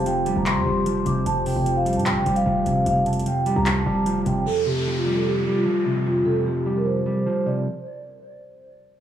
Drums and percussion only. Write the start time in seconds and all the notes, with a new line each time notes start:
0.06 closed hi-hat
0.26 closed hi-hat
0.46 clap, closed hi-hat
0.86 closed hi-hat
1.06 closed hi-hat
1.26 closed hi-hat
1.46 open hi-hat
1.66 closed hi-hat
1.86 closed hi-hat
1.93 closed hi-hat
1.99 closed hi-hat
2.06 clap, closed hi-hat
2.26 closed hi-hat
2.36 closed hi-hat
2.66 closed hi-hat
2.86 closed hi-hat
3.06 closed hi-hat, open hi-hat
3.13 closed hi-hat
3.20 closed hi-hat
3.26 closed hi-hat
3.46 closed hi-hat
3.66 clap, closed hi-hat
4.06 closed hi-hat
4.26 closed hi-hat